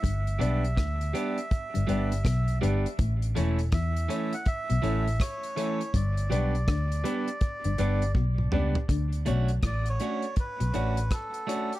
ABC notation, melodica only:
X:1
M:4/4
L:1/16
Q:"Swing 16ths" 1/4=81
K:D
V:1 name="Melodica"
e12- e2 z2 | z4 e3 f e4 c4 | d12 z4 | z4 d c3 B4 A3 G |]